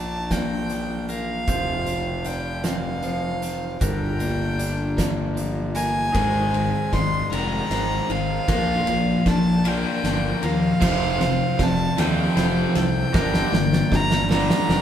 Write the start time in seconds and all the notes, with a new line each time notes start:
Already playing: A#1 A#2 A#3 D4 F4 A#4 D5 A5
0.31 A#3 D5 G5, kick, snare, closed hi-hat
0.70 F3, closed hi-hat
1.09 A#3 A#4 F5, closed hi-hat
1.48 F1 F3 C4 F4 C5, kick, closed hi-hat
1.87 C4, closed hi-hat
2.25 F4 D5 G5, closed hi-hat
2.63 C4 F5, snare, closed hi-hat
3.03 F3 C5, closed hi-hat
3.42 C4, closed hi-hat
3.81 G1 G2 G3 D4 A#4 G5, kick, closed hi-hat
4.19 A#3 D5, closed hi-hat
4.59 D4, closed hi-hat
4.97 A#3 D5, kick, snare, closed hi-hat
5.36 F3, closed hi-hat
5.75 A#3 A#4 G#5, closed hi-hat
6.12 G#1 G#2 D#3 G#3 D#4 G#4 A#4 C5, kick, snare, ride
6.17 G#3
6.53 G#2 D#3 C4, ride
6.92 G#1 G#2 D#3 D#4 D5 C6, kick, snare, ride
7.31 F1 G#2 D#3 G#3 A#4 A#5, ride
7.70 G#1 D#4 C5, snare, ride
8.09 G#1 G#2 D#3 A#4 F5, ride
8.48 A#1 A#2 F3 A#3 D4 F4 A#4, kick, snare, ride
8.87 A#1 A#2 F3 A#3 D5, ride
9.26 A#1 A#2 F3 D4 A5, kick, snare, ride
9.64 A#2 F3 A#3 A#4 D5 G5, ride
10.04 G1 D4, snare, ride
10.42 D#2 A#2 F3 A#4 F5, ride
10.80 F1 F2 C3 F3 C4 C5, kick, snare, crash
11.20 F2 C3 C4, snare, ride
11.58 F1 F2 C3 F4 D5, kick, snare, ride
11.63 A5
11.98 D#2 F2 C3 F3 A4 G5, snare, ride
12.36 F1 F4 C5, snare, ride
12.75 C2 F2 C3 A4 G5, snare, ride
13.13 G1 G2 D3 G3 D4 A#4, kick, snare
13.34 snare
13.52 G1 G2 D3 A#3 D5, snare
13.73 snare
13.92 G1 G2 D3 D4 A#5, kick, snare
14.11 snare
14.30 G2 D3 G3 A#4 D5 A#5, snare
14.50 snare
14.69 F1 D4, snare